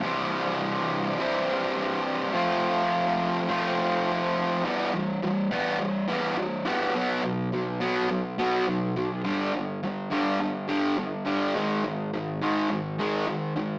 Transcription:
\new Staff \with { instrumentName = "Distorted electric guitar" } { \clef bass \time 4/4 \key e \minor \tempo 4 = 104 <c e g c' e'>2 <c e g c' e'>2 | <f a c' f'>2 <f a c' f'>2 | <e g b>8 <e g>8 <e g>8 <e g b>8 <e g>8 <e g b>8 <e g>8 <e g b>8 | <b, fis b>8 <b, fis>8 <b, fis>8 <b, fis b>8 <b, fis>8 <b, fis b>8 <b, fis>8 <b, fis>8 |
<g, d g>8 <g, d>8 <g, d>8 <g, d g>8 <g, d>8 <g, d g>8 <g, d>8 <g, d g>8 | <gis, dis gis>8 <gis, dis>8 <gis, dis>8 <gis, dis gis>8 <gis, dis>8 <gis, dis gis>8 <gis, dis>8 <gis, dis>8 | }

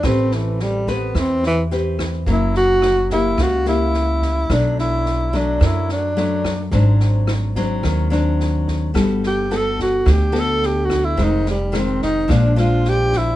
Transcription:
<<
  \new Staff \with { instrumentName = "Tenor saxophone" } { \time 4/4 \key g \major \tempo 4 = 108 c'8 e8 g8 b8 c'8 e8 r4 | e'8 fis'4 e'8 fis'8 e'4. | d'8 e'4 d'8 e'8 d'4. | r1 |
r8 g'8 a'8 fis'8 g'8 a'8 \tuplet 3/2 { g'8 fis'8 e'8 } | ees'8 g8 c'8 ees'8 d'8 f'8 g'8 e'8 | }
  \new Staff \with { instrumentName = "Nylon-string guitar" } { \time 4/4 \key g \major << { <c' g' b'>4. <c' g' b'>4. <c' g' b'>4 | <ais e'>4. <ais e' g'>4 <ais e' g'>4. | <fis a d'>4. <fis a d'>4. <fis a d'>8 r8 | <ges c' d'>4. <ges c' d'>4 <ges c' d'>4. |
<b fis' a'>4 <b fis' a'>4 r8 <b fis' a'>4. | <ees aes c'>8 r8 <ees aes c'>4 <f aes d'>8 <f aes d'>4. | } \\ { a2 e2 | fis2 cis2 | b,2 fis,2 | aes,2 ees2 |
g2 d2 | f,2 bes,2 | } >> }
  \new Staff \with { instrumentName = "Upright bass" } { \clef bass \time 4/4 \key g \major a,,2 e,2 | fis,,2 cis,2 | b,,2 fis,2 | aes,,2 ees,2 |
g,,2 d,2 | f,,2 bes,,2 | }
  \new DrumStaff \with { instrumentName = "Drums" } \drummode { \time 4/4 <bd ss sn>8 sn8 sn8 <bd sn>8 <bd ss sn>8 sn8 sn8 <bd ss sn>8 | <bd sn>8 sn8 <ss sn>8 <bd sn>8 <bd ss sn>8 sn8 sn8 <bd sn>8 | <bd ss sn>8 sn8 sn8 <bd sn>8 <bd ss sn>8 sn8 sn8 <bd ss sn>8 | <bd sn>8 sn8 <ss sn>8 <bd sn>8 <bd ss sn>8 sn8 sn8 <bd sn>8 |
<bd ss sn>8 sn8 sn8 <bd sn>8 <bd ss sn>8 sn8 sn8 <bd ss sn>8 | <bd sn>8 sn8 <ss sn>8 <bd sn>8 <bd ss sn>8 sn8 sn8 <bd sn>8 | }
>>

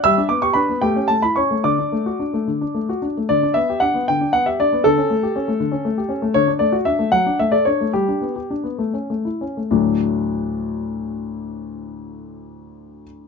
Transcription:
\new Staff \with { instrumentName = "Grand piano" } { \time 6/8 \key d \major \tempo 4. = 73 << { <e'' e'''>8 d'''16 cis'''16 <b' b''>8 <g' g''>8 a''16 b''16 <cis'' cis'''>8 | <d'' d'''>2~ <d'' d'''>8 r8 | d''8 e''8 fis''8 g''8 fis''16 e''16 d''8 | a'2. |
cis''8 d''8 e''8 fis''8 e''16 d''16 cis''8 | g'2. | <d, a, fis a d'>2.~ | <d, a, fis a d'>2. | } \\ { g16 d'16 b16 g'16 d'16 b16 a16 cis'16 a16 e'16 cis'16 a16 | d16 d'16 a16 fis'16 d'16 a16 d16 d'16 a16 fis'16 d'16 a16 | d16 d'16 b16 g'16 d'16 b16 d16 d'16 b16 g'16 d'16 b16 | d16 cis'16 a16 g'16 cis'16 a16 d16 cis'16 a16 g'16 cis'16 a16 |
d16 d'16 a16 fis'16 d'16 a16 fis16 d'16 a16 a'16 d'16 a16 | g16 d'16 b16 g'16 d'16 b16 a16 cis'16 a16 e'16 cis'16 a16 | r2. | r2. | } >> }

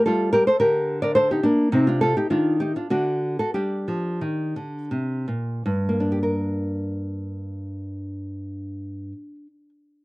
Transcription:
\new Staff \with { instrumentName = "Nylon-string guitar" } { \time 3/4 \key g \minor \tempo 4 = 86 << { <f' a'>8 <g' bes'>16 <a' c''>16 <g' bes'>8. <bes' d''>16 <a' c''>16 <ees' g'>16 <bes d'>8 | <c' ees'>16 <d' f'>16 <f' a'>16 <ees' g'>16 <d' f'>8 <ees' g'>16 <d' f'>16 <d' fis'>8. <fis' a'>16 | <d' g'>2~ <d' g'>8 r8 | <g, bes d' g' bes'>2.~ |
<g, bes d' g' bes'>2. | } \\ { g4 d2 | c4 ees4 d4 | g8 f8 ees8 d8 c8 bes,8 | r2. |
r2. | } >> }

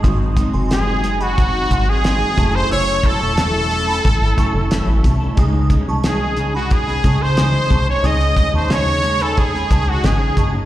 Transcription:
<<
  \new Staff \with { instrumentName = "Synth bell" } { \time 4/4 \key cis \minor \tempo 4 = 90 <bis'' dis'''>8 r16 <gis'' bis''>16 <gis'' bis''>16 r8 <gis'' b''>8 r16 <gis'' bis''>16 r16 <bis'' dis'''>16 r16 <a'' cis'''>16 r16 | <cis''' e'''>8 r16 <a'' cis'''>16 <a'' cis'''>16 r8 <gis'' b''>8 r16 <a'' cis'''>16 r16 <cis''' e'''>16 r16 <a'' cis'''>16 r16 | <gis'' dis'''>8 r16 <a'' cis'''>16 <gis'' cis'''>16 r8 <gis'' b''>8 r16 <a'' cis'''>16 r16 <gis'' dis'''>16 r16 <a'' cis'''>16 r16 | <gis'' dis'''>8 r16 <a'' cis'''>16 <gis'' cis'''>16 r8 <gis'' b''>8 r16 <a'' cis'''>16 r16 <gis'' dis'''>16 r16 <a'' cis'''>16 r16 | }
  \new Staff \with { instrumentName = "Trumpet" } { \time 4/4 \key cis \minor r4 gis'8. fis'4 gis'4 bis'16 | cis''8 a'2. r8 | r4 gis'8. fis'16 gis'8. bis'4 cis''16 | dis''8. bis'16 cis''8. a'16 gis'8. fis'16 gis'8. r16 | }
  \new Staff \with { instrumentName = "Synth keys" } { \time 4/4 \key cis \minor <gis bis dis' fis'>2.~ <gis bis dis' fis'>8 <a cis' e' gis''>8~ | <a cis' e' gis''>2~ <a cis' e' gis''>8 <a cis' e' gis''>4. | <gis cis' dis' gis'>1 | <gis cis' dis' gis'>1 | }
  \new Staff \with { instrumentName = "Clean electric guitar" } { \time 4/4 \key cis \minor <gis, fis bis dis'>8 <gis, fis bis dis'>16 <fis bis dis'>16 <gis, fis bis dis'>8 <gis, fis bis dis'>16 <fis bis dis'>8 <fis bis dis'>16 <gis, fis bis dis'>16 <fis bis dis'>16 <gis, fis bis dis'>8 <fis cis' e' a'>8~ | <fis cis' e' a'>8 <fis cis' e' a'>16 <cis' e' a'>16 <fis cis' e' a'>8 <fis cis' e' a'>16 <cis' e' a'>8 <cis' e' a'>16 <fis cis' e' a'>16 <cis' e' a'>16 <fis cis' e' a'>8. <cis' e' a'>16 | <cis gis cis' dis'>8 <cis gis cis' dis'>16 <gis cis' dis'>16 <gis cis' dis'>8 <cis gis cis' dis'>16 <gis cis' dis'>8 <gis cis' dis'>16 <cis gis cis' dis'>16 <gis cis' dis'>16 <cis gis cis' dis'>8. <gis cis' dis'>16 | <cis gis cis' dis'>8 <cis gis cis' dis'>16 <gis cis' dis'>16 <cis gis cis' dis'>8 <cis gis cis' dis'>16 <gis cis' dis'>8 <gis cis' dis'>16 <cis gis cis' dis'>16 <gis cis' dis'>16 <cis gis cis' dis'>8. <gis cis' dis'>16 | }
  \new Staff \with { instrumentName = "Analog synth bass" } { \clef bass \time 4/4 \key cis \minor gis,,8. fis,,4.~ fis,,16 gis,,4 fis,,8 | fis,,8. e,,4~ e,,16 a,,16 gis,,16 r16 fis,,8 a,,16 bis,,8 | cis,8. bis,,4.~ bis,,16 cis,4 bis,,8 | cis,8. dis,4.~ dis,16 cis,8 gis,,8 g,,8 | }
  \new DrumStaff \with { instrumentName = "Drums" } \drummode { \time 4/4 <hh bd>8 <hh bd>8 <hh sn>8 hh16 hh16 <hh bd>8 <hh bd>8 <hh sn>8 <hh bd>8 | hh16 hh16 <hh bd>8 <hh sn>8 hh8 <hh bd>8 <hh bd>8 <hh sn>8 <hh bd>8 | <hh bd>8 <hh bd>8 <hh sn>8 hh8 <hh bd>16 sn16 <hh bd>8 <hh sn>8 <hh bd>8 | hh16 hh16 <hh bd>8 <hh sn>8 hh16 hh16 <hh bd>16 sn16 <hh bd>8 <hh sn>8 <hh bd>8 | }
>>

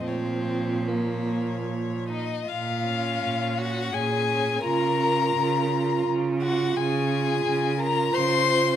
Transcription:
<<
  \new Staff \with { instrumentName = "Violin" } { \time 3/4 \key bes \minor \tempo 4 = 85 des''4 des''4. ees''8 | f''4. ges''8 aes''4 | bes''2 r8 ges''8 | aes''4. bes''8 c'''4 | }
  \new Staff \with { instrumentName = "Violin" } { \time 3/4 \key bes \minor c'4 bes4 r8 ees'8 | f'4. ges'8 aes'4 | bes'2 r8 ges'8 | aes'4. bes'8 c''4 | }
  \new Staff \with { instrumentName = "Viola" } { \time 3/4 \key bes \minor f2~ f8 r8 | r8 des'4 des'4 des'8 | f'8 f'4 f'4 f'8 | r8 f'4 f'4 f'8 | }
  \new Staff \with { instrumentName = "Cello" } { \clef bass \time 3/4 \key bes \minor bes,2~ bes,8 r8 | bes,4 bes,4 bes,4 | des4 des4 des4 | des4 des4 des4 | }
>>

